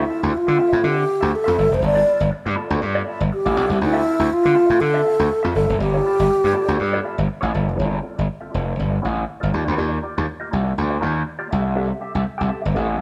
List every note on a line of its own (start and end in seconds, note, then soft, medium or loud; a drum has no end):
0.00 0.39 E4 medium
0.09 0.26 C4 medium
0.09 0.23 F4 medium
0.09 0.22 A4 medium
0.09 0.22 E5 medium
0.23 0.32 D2 medium
0.23 muted clean electric guitar stroke soft
0.32 muted clean electric guitar stroke soft
0.32 muted slap bass stroke soft
0.37 0.88 F4 medium
0.47 0.56 D3 medium
0.47 muted clean electric guitar stroke soft
0.58 0.72 C4 medium
0.58 0.72 F4 medium
0.58 0.71 A4 medium
0.58 0.71 E5 medium
0.72 0.81 A2 medium
0.72 0.82 C4 medium
0.72 0.82 F4 medium
0.72 0.83 A4 medium
0.72 0.83 E5 medium
0.83 1.03 D3 medium
0.83 1.04 C4 medium
0.83 0.97 F4 medium
0.83 0.96 A4 medium
0.83 0.96 E5 medium
0.87 1.37 G4 loud
0.97 muted clean electric guitar stroke soft
1.07 muted clean electric guitar stroke soft
1.21 1.31 D2 medium
1.21 1.31 C4 soft
1.21 1.32 F4 medium
1.21 1.32 A4 medium
1.21 1.32 E5 medium
1.32 1.76 A4 medium
1.32 muted clean electric guitar stroke soft
1.44 1.56 F2 medium
1.44 1.55 C4 medium
1.44 1.55 F4 medium
1.44 1.55 A4 medium
1.44 1.56 E5 medium
1.56 1.69 G1 medium
1.56 1.74 C4 medium
1.56 1.71 F4 medium
1.56 1.71 A4 medium
1.56 1.70 E5 medium
1.71 1.80 F1 medium
1.71 1.84 C5 loud
1.71 muted clean electric guitar stroke soft
1.81 2.01 G1 medium
1.81 muted clean electric guitar stroke soft
1.85 2.30 D5 loud
1.95 2.05 B3 medium
1.95 2.06 F4 medium
1.95 2.06 A4 medium
1.95 2.06 D5 medium
2.06 2.24 B3 medium
2.06 2.21 F4 medium
2.06 2.20 A4 medium
2.06 2.19 D5 medium
2.20 2.29 G1 medium
2.20 muted clean electric guitar stroke soft
2.31 muted clean electric guitar stroke soft
2.31 muted slap bass stroke soft
2.45 2.54 G2 loud
2.45 muted clean electric guitar stroke soft
2.56 2.70 B3 medium
2.56 2.71 F4 medium
2.56 2.70 A4 medium
2.56 2.68 D5 medium
2.70 2.79 D2 loud
2.70 2.80 B3 medium
2.70 2.81 F4 medium
2.70 2.81 A4 medium
2.70 2.81 D5 medium
2.81 3.01 G2 loud
2.81 muted clean electric guitar stroke soft
2.95 3.05 B3 medium
2.95 3.06 F4 medium
2.95 3.07 A4 medium
2.95 3.07 D5 medium
3.06 3.23 B3 medium
3.06 3.21 F4 medium
3.06 3.21 A4 medium
3.06 3.20 E5 medium
3.20 3.29 G1 medium
3.20 muted clean electric guitar stroke soft
3.31 3.79 G4 loud
3.31 muted clean electric guitar stroke soft
3.46 3.57 A1 medium
3.46 3.56 B3 medium
3.46 3.56 F4 medium
3.46 3.57 A4 medium
3.46 3.57 D5 medium
3.57 3.67 B1 medium
3.57 3.73 B3 medium
3.57 3.70 F4 medium
3.57 3.70 A4 medium
3.57 3.69 D5 medium
3.69 3.78 C2 medium
3.69 muted clean electric guitar stroke medium
3.81 4.00 D2 medium
3.81 4.34 E4 loud
3.81 muted clean electric guitar stroke soft
3.93 4.03 C4 medium
3.93 4.03 F4 medium
3.93 4.04 A4 medium
3.93 4.04 E5 medium
4.04 4.22 C4 medium
4.04 4.17 F4 medium
4.04 4.18 A4 medium
4.04 4.17 E5 medium
4.18 4.28 D2 medium
4.18 muted clean electric guitar stroke medium
4.30 4.82 F4 loud
4.30 muted clean electric guitar stroke soft
4.30 muted slap bass stroke soft
4.44 4.54 D3 medium
4.44 muted clean electric guitar stroke soft
4.55 4.68 C4 medium
4.55 4.68 F4 medium
4.55 4.68 A4 medium
4.55 4.67 E5 medium
4.68 4.78 A2 loud
4.68 4.79 C4 soft
4.68 4.79 F4 medium
4.68 4.79 A4 medium
4.68 4.80 E5 medium
4.81 5.00 D3 medium
4.81 5.54 A4 loud
4.94 5.03 C4 medium
4.94 5.04 F4 medium
4.94 5.04 A4 medium
4.94 5.06 E5 medium
5.04 5.22 C4 medium
5.04 5.19 F4 medium
5.04 5.18 A4 medium
5.04 5.19 F5 medium
5.19 5.28 D2 medium
5.30 muted clean electric guitar stroke soft
5.43 5.53 F2 medium
5.43 5.53 C4 medium
5.43 5.54 F4 medium
5.43 5.54 A4 medium
5.43 5.54 E5 medium
5.54 5.66 G1 medium
5.54 5.71 C4 medium
5.54 5.69 F4 medium
5.54 5.78 A4 loud
5.54 5.68 A4 medium
5.54 5.68 E5 medium
5.69 5.78 F1 medium
5.69 muted clean electric guitar stroke soft
5.80 5.99 G1 loud
5.80 7.25 G4 loud
5.80 muted clean electric guitar stroke soft
5.94 6.04 B3 medium
5.94 6.05 F4 medium
5.94 6.05 A4 medium
5.94 6.06 D5 medium
6.05 6.22 B3 medium
6.05 6.18 F4 medium
6.05 6.17 A4 medium
6.05 6.17 D5 medium
6.18 6.27 G1 medium
6.18 muted clean electric guitar stroke soft
6.30 muted clean electric guitar stroke soft
6.30 muted slap bass stroke soft
6.44 6.52 G2 medium
6.44 muted clean electric guitar stroke soft
6.53 6.68 B3 medium
6.53 6.67 F4 medium
6.53 6.67 A4 medium
6.53 6.66 D5 medium
6.67 6.77 D2 medium
6.67 6.78 B3 medium
6.67 6.78 F4 medium
6.67 6.79 A4 medium
6.67 6.78 D5 medium
6.79 6.98 G2 loud
6.79 muted clean electric guitar stroke soft
6.93 7.02 B3 medium
6.93 7.03 F4 medium
6.93 7.03 A4 medium
6.93 7.05 D5 medium
7.03 7.20 B3 medium
7.03 7.18 F4 medium
7.03 7.18 A4 medium
7.03 7.17 E5 medium
7.18 7.26 G1 medium
7.18 muted clean electric guitar stroke soft
7.28 muted clean electric guitar stroke soft
7.41 7.51 A1 medium
7.41 7.51 B3 medium
7.41 7.51 F4 medium
7.41 7.51 A4 medium
7.41 7.52 D5 medium
7.52 7.69 G1 medium
7.52 7.70 B3 medium
7.52 7.65 F4 medium
7.52 7.65 A4 medium
7.52 7.64 D5 medium
7.66 7.77 F1 medium
7.66 muted clean electric guitar stroke soft
7.76 7.98 G1 medium
7.76 7.98 C4 medium
7.76 7.91 F4 medium
7.76 7.90 A4 medium
7.76 7.90 D5 medium
7.91 muted clean electric guitar stroke soft
8.02 8.16 C4 medium
8.02 8.15 F4 medium
8.02 8.15 A4 medium
8.02 8.15 D5 medium
8.16 8.26 G1 medium
8.16 8.25 C4 soft
8.16 8.26 F4 medium
8.16 8.26 A4 medium
8.16 8.27 D5 medium
8.26 muted clean electric guitar stroke soft
8.41 8.49 C4 medium
8.41 8.50 F4 medium
8.41 8.51 A4 medium
8.41 8.51 E5 medium
8.50 8.72 C4 medium
8.50 8.66 F4 medium
8.50 8.65 A4 medium
8.50 8.64 D5 medium
8.54 8.73 F1 medium
8.66 muted clean electric guitar stroke soft
8.79 8.98 G1 medium
8.90 muted clean electric guitar stroke soft
9.02 9.23 A1 medium
9.02 9.23 C4 medium
9.02 9.15 F4 medium
9.02 9.15 A4 medium
9.02 9.14 D5 medium
9.16 muted clean electric guitar stroke soft
9.27 muted clean electric guitar stroke soft
9.40 9.51 G1 medium
9.40 9.51 C4 medium
9.40 9.51 F4 medium
9.40 9.52 A4 medium
9.40 9.52 D5 medium
9.51 9.64 D#2 medium
9.51 9.69 A#3 soft
9.51 9.66 F4 medium
9.51 9.66 G4 medium
9.51 9.65 D5 medium
9.66 9.76 D2 medium
9.66 muted clean electric guitar stroke soft
9.77 9.97 D#2 medium
9.77 9.98 A#3 medium
9.77 9.92 F4 medium
9.77 9.91 G4 medium
9.77 9.90 D5 medium
9.92 muted clean electric guitar stroke soft
10.02 10.17 A#3 medium
10.02 10.16 F4 medium
10.02 10.16 G4 medium
10.02 10.15 D5 medium
10.17 10.26 D#2 medium
10.17 10.26 A#3 soft
10.17 10.27 F4 medium
10.17 10.26 G4 medium
10.17 10.28 D5 medium
10.27 muted clean electric guitar stroke soft
10.40 10.50 A#3 medium
10.40 10.50 F4 medium
10.40 10.51 G4 medium
10.40 10.52 D#5 medium
10.51 10.72 C2 medium
10.51 10.72 A#3 medium
10.51 10.66 F4 medium
10.51 10.65 G4 medium
10.51 10.64 D5 medium
10.66 muted clean electric guitar stroke soft
10.78 10.97 D2 medium
10.90 muted clean electric guitar stroke soft
11.01 11.21 D#2 medium
11.01 11.22 A#3 medium
11.01 11.16 F4 medium
11.01 11.15 G4 medium
11.01 11.14 D5 medium
11.15 muted clean electric guitar stroke soft
11.25 muted clean electric guitar stroke soft
11.39 11.49 A#3 medium
11.39 11.50 F4 medium
11.39 11.49 G4 medium
11.39 11.51 D5 medium
11.50 11.91 C2 medium
11.50 11.68 C4 medium
11.50 11.64 G4 soft
11.50 11.63 A4 medium
11.50 11.63 E5 medium
11.64 muted clean electric guitar stroke soft
11.75 11.96 C4 medium
11.75 11.90 G4 medium
11.75 11.89 A4 medium
11.75 11.88 E5 loud
11.90 muted clean electric guitar stroke soft
12.01 12.14 C4 medium
12.01 12.14 G4 medium
12.01 12.13 A4 medium
12.01 12.13 E5 medium
12.14 12.23 C2 medium
12.14 12.23 C4 soft
12.14 12.23 G4 medium
12.14 12.24 A4 medium
12.14 12.24 E5 medium
12.24 muted clean electric guitar stroke soft
12.38 12.49 C2 medium
12.38 12.47 C4 medium
12.38 12.48 G4 medium
12.38 12.48 A4 medium
12.38 12.49 G5 medium
12.48 12.70 C4 medium
12.48 12.64 G4 medium
12.48 12.63 A4 medium
12.48 12.63 E5 medium
12.64 12.74 G1 medium
12.64 muted clean electric guitar stroke soft
12.74 12.95 A1 medium
12.74 12.95 C4 medium
12.74 12.88 G4 medium
12.74 12.88 A4 medium
12.74 12.87 E5 medium
12.88 muted clean electric guitar stroke soft